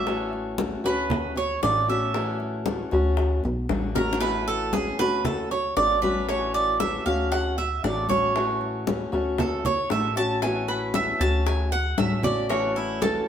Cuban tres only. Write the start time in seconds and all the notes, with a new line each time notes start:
Already playing: E5
0.86 B4
1.37 C#5
1.63 D5
1.90 E5
3.96 A#4
4.20 B4
4.48 A4
4.73 G#4
4.99 B4
5.25 A4
5.51 C#5
5.77 D5
6.02 B4
6.29 C#5
6.54 D5
6.80 E5
7.06 F5
7.32 F#5
7.58 E5
7.84 D5
8.09 C#5
9.40 A4
9.66 C#5
9.91 E5
10.17 A5
10.42 G#5
10.68 B4
10.95 E5
11.21 A5
11.46 G#5
11.72 F#5
11.98 E5
12.24 D5
12.50 C#5
12.76 E4
13.02 A4